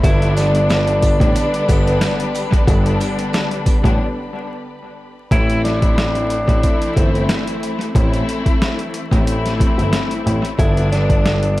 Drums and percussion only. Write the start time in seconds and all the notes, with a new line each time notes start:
0.04 kick, closed hi-hat, sleigh bells
0.22 closed hi-hat
0.36 snare, closed hi-hat, sleigh bells
0.55 closed hi-hat
0.69 snare, closed hi-hat, sleigh bells
0.87 closed hi-hat
1.02 kick, closed hi-hat, sleigh bells
1.20 kick, closed hi-hat
1.35 closed hi-hat, sleigh bells
1.54 closed hi-hat
1.68 kick, closed hi-hat, sleigh bells
1.87 closed hi-hat
2.01 snare, closed hi-hat, sleigh bells
2.20 closed hi-hat
2.35 closed hi-hat, sleigh bells
2.52 kick, closed hi-hat
2.67 kick, closed hi-hat, sleigh bells
2.86 closed hi-hat
3.00 closed hi-hat, sleigh bells
3.19 closed hi-hat
3.33 snare, closed hi-hat, sleigh bells
3.51 closed hi-hat
3.66 kick, closed hi-hat, sleigh bells
3.84 kick, closed hi-hat
5.31 kick, closed hi-hat
5.50 closed hi-hat
5.65 snare, closed hi-hat
5.82 kick, closed hi-hat
5.98 snare, closed hi-hat
6.15 closed hi-hat
6.30 closed hi-hat
6.48 kick, closed hi-hat
6.63 kick, closed hi-hat
6.82 closed hi-hat
6.97 kick, closed hi-hat
7.15 closed hi-hat
7.29 snare, closed hi-hat
7.47 closed hi-hat
7.63 closed hi-hat
7.81 closed hi-hat
7.95 kick, closed hi-hat
8.14 closed hi-hat
8.29 closed hi-hat
8.46 kick, closed hi-hat
8.62 snare, closed hi-hat
8.79 closed hi-hat
8.94 closed hi-hat
9.12 kick, closed hi-hat
9.27 closed hi-hat
9.46 snare, closed hi-hat
9.60 kick, closed hi-hat
9.79 closed hi-hat
9.93 snare, closed hi-hat
10.11 closed hi-hat
10.27 closed hi-hat
10.45 closed hi-hat
10.59 kick, closed hi-hat
10.77 closed hi-hat
10.93 snare, closed hi-hat
11.10 kick, closed hi-hat
11.26 snare, closed hi-hat
11.43 closed hi-hat